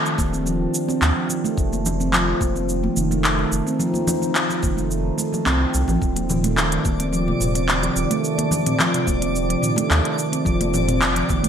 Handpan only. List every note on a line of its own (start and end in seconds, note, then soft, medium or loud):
0.33 0.40 C4 medium
0.46 0.60 F3 medium
0.88 1.01 C4 medium
1.17 1.28 F3 medium
1.30 1.43 D#3 medium
1.44 1.57 A3 medium
2.00 2.07 C4 medium
2.13 2.27 F3 loud
2.56 2.68 C4 medium
2.83 2.95 F3 medium
2.97 3.10 D#3 medium
3.11 3.23 A3 medium
3.67 3.74 C4 medium
3.79 3.94 F3 loud
4.22 4.34 C4 medium
4.50 4.61 F3 medium
4.63 4.76 D#3 medium
4.77 4.90 A3 medium
5.18 5.32 A3 medium
5.33 5.40 F3 medium
5.46 5.60 C4 medium
5.88 6.00 F3 medium
6.16 6.28 F3 medium
6.29 6.43 D#3 medium
6.44 6.57 A3 medium
6.99 7.07 C4 medium
7.12 7.27 F3 medium
7.28 7.40 C3 medium
7.55 7.68 C4 medium
7.83 7.95 F3 medium
7.96 8.09 D#3 medium
8.11 8.23 A3 loud
8.67 8.74 C4 medium
8.80 8.94 F3 loud
8.94 9.06 C3 medium
9.22 9.34 C4 medium
9.49 9.61 F3 medium
9.62 9.76 D#3 medium
9.77 9.90 A3 loud
10.32 10.40 C4 medium
10.45 10.60 F3 loud
10.60 10.73 C3 medium
10.88 11.01 C4 medium
11.16 11.28 F3 medium
11.29 11.43 D#3 medium
11.44 11.49 A3 loud